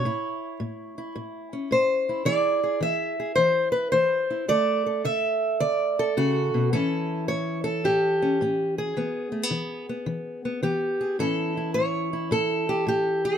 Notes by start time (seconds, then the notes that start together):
Already playing: C#5
0.05 A2 E4
0.60 A2
0.98 E4
1.15 A2
1.53 C#4
1.71 A2 C5
2.09 E4
2.25 E3 E4 G#4 D5
2.63 G#4
2.80 E3 E5
3.20 G#4
3.35 E3 C5
3.72 B4
3.92 E3 C5
4.30 E4
4.48 D3 A3 A4 D5
4.86 A4
5.04 D3 E5
5.60 D3 D5
5.99 A4
6.17 C#3 F#4
6.54 B2
6.73 A2 E3 C#4 E4 A4
7.28 A2 C#5
7.64 A4
7.84 A2 G4
8.22 C#4
8.41 A2 C#4
8.78 G#4
8.97 E3 B3
9.32 A3
9.43 B3
9.51 E3
9.89 B3
10.06 E3
10.45 B3
10.63 E3 B3 G4
11.01 G#4
11.19 A2 E3 C#4 E4 A4
11.57 E4
11.74 A2 C#5
12.13 E4
12.31 A2 A4
12.69 G4
12.86 A2 G4
13.25 A4